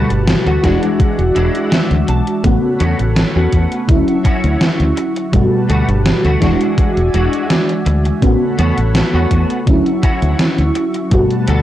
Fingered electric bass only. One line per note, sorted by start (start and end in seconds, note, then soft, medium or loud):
0.10 0.33 G1 medium
0.46 0.57 D2 medium
0.64 0.76 E1 medium
1.19 1.30 E1 medium
1.36 1.48 E1 medium
1.91 2.02 D2 medium
2.08 2.20 B1 medium
2.44 2.57 A1 loud
2.80 2.93 E2 medium
3.00 3.22 A1 medium
3.36 3.47 E2 medium
3.53 3.65 E2 medium
3.89 4.01 D2 medium
4.44 4.55 D2 loud
4.80 4.91 D2 loud
5.33 5.46 G1 loud
5.69 5.82 D2 medium
5.88 6.11 G1 medium
6.24 6.36 D2 medium
6.42 6.54 E1 medium
6.97 7.08 E1 medium
7.14 7.26 E1 medium
7.86 8.10 D2 medium
8.22 8.35 A1 loud
8.59 8.71 E2 loud
8.78 9.00 A1 medium
9.14 9.25 E2 medium
9.31 9.43 E2 medium
9.67 9.79 D2 medium
10.22 10.33 D2 loud
10.58 10.69 D2 loud
11.12 11.24 G1 loud
11.48 11.60 D2 medium